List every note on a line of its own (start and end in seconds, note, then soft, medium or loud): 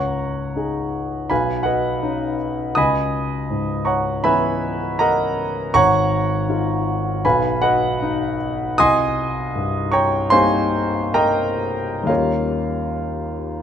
0.00 1.27 C#2 soft
0.00 1.27 C#5 medium
0.00 1.27 F#5 medium
0.00 1.27 A#5 medium
0.00 1.30 C#6 medium
0.56 1.26 D#4 soft
0.56 1.27 G#4 soft
1.30 2.73 B1 soft
1.30 1.64 B4 medium
1.30 1.65 F5 medium
1.30 1.65 G#5 medium
1.30 1.67 B5 medium
1.63 2.35 F#4 soft
1.63 2.35 B4 soft
1.63 2.35 D#5 soft
1.63 2.38 F#5 medium
2.02 2.72 C#4 soft
2.02 2.73 D#4 soft
2.75 5.69 C#2 soft
2.75 3.84 D#5 medium
2.75 3.84 G#5 medium
2.75 3.84 B5 medium
2.75 3.87 D#6 medium
3.50 4.70 G#2 soft
3.85 4.22 C#5 soft
3.85 4.22 F#5 medium
3.85 4.21 A#5 soft
3.85 4.24 C#6 medium
4.24 5.69 E3 soft
4.24 5.70 B3 soft
4.24 5.70 C#4 soft
4.24 5.70 E4 soft
4.24 4.96 B4 medium
4.24 4.96 E5 medium
4.24 4.96 G#5 medium
4.24 4.99 B5 medium
4.99 5.70 A#4 medium
4.99 5.70 D#5 medium
4.99 5.70 F#5 medium
4.99 5.73 A#5 medium
5.74 7.21 G#1 medium
5.74 7.22 C#5 medium
5.74 7.22 F#5 medium
5.74 7.21 A#5 medium
5.74 7.25 C#6 loud
6.49 7.21 D#4 soft
6.49 7.22 F4 soft
7.25 8.74 B1 medium
7.25 7.60 B4 medium
7.25 7.60 F5 medium
7.25 7.60 G#5 medium
7.25 7.63 B5 medium
7.62 8.36 F#4 medium
7.62 8.36 B4 medium
7.62 8.36 D#5 medium
7.62 8.39 F#5 medium
8.03 8.75 D#4 soft
8.78 12.06 C2 medium
8.78 9.91 D#5 medium
8.78 9.91 G#5 medium
8.78 9.91 C6 medium
8.78 9.94 D#6 medium
9.55 10.81 G2 soft
9.92 10.29 C#5 medium
9.92 10.30 G5 medium
9.92 10.30 A#5 medium
9.92 10.31 C#6 medium
10.30 12.02 G3 soft
10.30 12.04 A#3 soft
10.30 12.05 C4 soft
10.30 12.05 D#4 soft
10.30 11.11 C5 medium
10.30 11.10 F5 medium
10.30 11.11 G#5 medium
10.30 11.14 C6 medium
11.14 12.05 A#4 medium
11.14 12.05 D#5 medium
11.14 12.05 G5 medium
11.14 12.09 A#5 medium
12.03 13.62 D#2 soft
12.03 13.62 G3 soft
12.03 13.62 A#3 soft
12.03 13.62 C#4 soft
12.03 13.62 F5 medium
12.08 13.62 D#4 soft
12.08 13.62 F4 medium
12.08 13.62 A#4 soft
12.08 13.62 C#5 medium